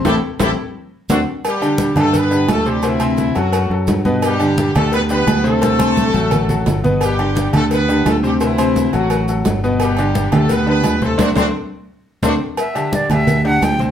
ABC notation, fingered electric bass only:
X:1
M:4/4
L:1/8
Q:1/4=172
K:G
V:1 name="Fingered electric bass" clef=bass
A,,, z A,,, z3 D,, z | z3 G,,3 D,,2- | D,,3 F,,2 F,, G,,2- | G,,3 D,,3 D,,2- |
D,,3 A,,,3 G,,,2- | G,,,3 D,,3 D,,2- | D,,3 A,,,3 G,,,2- | G,,,3 D,,3 D,,2 |
D,, D,, z4 D,, z | z3 D,,3 D,,2 |]